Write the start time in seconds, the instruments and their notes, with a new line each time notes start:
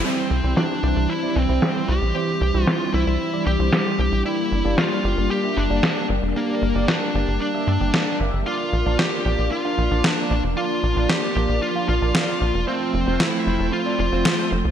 0.04 string machine E3 G3 C4, analog polysynth G3 C4 E4 C5, lead electric guitar C4
0.31 analog synth bass C2
0.44 analog synth bass C2, analog polysynth G3 C4 E4 C5
0.57 lead electric guitar D4, snare
0.83 analog synth bass C2, analog polysynth G3 C4 E4 C5
0.96 analog synth bass C2
1.10 lead electric guitar E4
1.23 analog polysynth G3 C4 E4 D5
1.36 analog synth bass C2, lead electric guitar C4
1.49 analog synth bass C2, analog polysynth G3 C4 E4 C5
1.62 snare
1.75 analog polysynth G3 C4 E4 C5
1.88 analog synth bass C2, lead electric guitar G4
2.02 analog synth bass A#1
2.15 analog polysynth G3 C4 E4 C5, string machine D4
2.41 analog synth bass C2
2.54 analog synth bass C2, analog polysynth G3 C4 E4 C5
2.64 lead electric guitar F4, snare
2.94 analog synth bass C2, analog polysynth G3 C4 E4 C5, lead electric guitar E4
3.07 analog synth bass C2
3.33 analog polysynth G3 C4 E4 D5
3.46 analog synth bass C2, lead electric guitar G4
3.59 analog synth bass C2, analog polysynth G3 C4 E4 C5
3.73 snare
3.86 analog polysynth G3 C4 E4 C5
3.99 analog synth bass C2
4.12 analog synth bass A#1
4.25 string machine A#3, analog polysynth A#3 D4 G4 D5, lead electric guitar E4
4.52 analog synth bass G1
4.65 analog synth bass G1, analog polysynth A#3 D4 G4 D5
4.78 lead electric guitar F4, snare
5.04 analog synth bass G1, analog polysynth A#3 D4 G4 D5
5.17 analog synth bass G1
5.31 lead electric guitar G4
5.44 analog polysynth A#3 D4 G4 E5
5.57 analog synth bass G1, lead electric guitar D4
5.70 analog synth bass G1, analog polysynth A#3 D4 G4 D5
5.83 snare
5.96 analog polysynth A#3 D4 G4 D5
6.09 analog synth bass G1
6.22 analog synth bass F1
6.36 analog polysynth A#3 D4 G4 D5, lead electric guitar A#3
6.62 analog synth bass G1
6.75 analog synth bass G1, analog polysynth A#3 D4 G4 D5
6.88 lead electric guitar D4, snare
7.15 analog synth bass G1, analog polysynth A#3 D4 G4 D5
7.28 analog synth bass G1
7.41 lead electric guitar D4
7.54 analog polysynth A#3 D4 G4 E5
7.67 analog synth bass G2
7.81 analog synth bass G1, analog polysynth A#3 D4 G4 D5
7.94 analog polysynth A#3 D4 G4 D5, snare
8.20 analog synth bass G1, analog polysynth A#3 D4 G4 E5
8.33 analog synth bass G1
8.46 string machine F3 A#3 D4, analog polysynth A#3 D4 F4 D5, lead electric guitar F4
8.73 analog synth bass A#1
8.86 analog synth bass A#1, analog polysynth A#3 D4 F4 D5
8.99 lead electric guitar G4, snare
9.25 analog synth bass A#1, analog polysynth A#3 D4 F4 D5
9.39 analog synth bass A#1
9.52 lead electric guitar F4
9.65 analog polysynth A#3 D4 F4 F5
9.78 analog synth bass A#1
9.91 analog synth bass A#1, analog polysynth A#3 D4 F4 D5
10.04 lead electric guitar D4, snare
10.17 analog polysynth A#3 D4 F4 D5
10.31 analog synth bass A#1
10.44 analog synth bass F1
10.57 analog polysynth A#3 D4 F4 D5, lead electric guitar F4
10.83 analog synth bass A#1
10.96 analog synth bass A#1, analog polysynth A#3 D4 F4 D5
11.10 lead electric guitar G4, snare
11.36 analog synth bass A#1, analog polysynth A#3 D4 F4 D5
11.49 analog synth bass A#1
11.62 lead electric guitar F4
11.75 analog polysynth A#3 D4 F4 F5
11.88 analog synth bass A#1, lead electric guitar F4
12.02 analog synth bass A#1, analog polysynth A#3 D4 F4 D5
12.15 snare
12.28 analog polysynth A#3 D4 F4 D5
12.41 analog synth bass A#1
12.54 analog synth bass F1
12.67 string machine F3 A3 C4, analog polysynth A3 C4 F4 C5, lead electric guitar C4
12.94 analog synth bass F1
13.07 analog synth bass F1, analog polysynth A3 C4 F4 C5
13.20 lead electric guitar E4, snare
13.46 analog synth bass F1, analog polysynth A3 C4 F4 C5
13.60 analog synth bass F1
13.73 lead electric guitar F4
13.86 analog polysynth A3 C4 F4 D5
13.99 analog synth bass F1, lead electric guitar F4
14.12 analog synth bass F1, analog polysynth A3 C4 F4 C5
14.25 snare
14.39 analog polysynth A3 C4 F4 C5
14.52 analog synth bass F1
14.65 analog synth bass C2